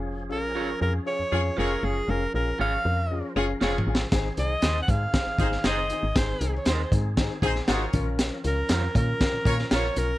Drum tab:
HH |------------------------------------------------|------------------------------------------------|x-----x-----x-----x-----x-----x-----x-----x-----|x-----x-----x-----x-----x-----x-----x-----x-----|
SD |------------------------------------------------|------------------------------------o-------o---|o-----------o-----------o--------o--o-----------|o-----------o-----------o--------o--o-----------|
T2 |------------------------------------------------|----------------------------------------o-------|------------------------------------------------|------------------------------------------------|
BD |------------------------------------------------|------------------------------------------------|o-----------------o-----o-----o-----------------|o-----------------o-----o-----o-----------o-----|

HH |x-----x-----x-----x-----x-----x-----x-----x-----|
SD |o-----------o-----------o--------o--o-----------|
T2 |------------------------------------------------|
BD |------------------o-----o-----o-----------------|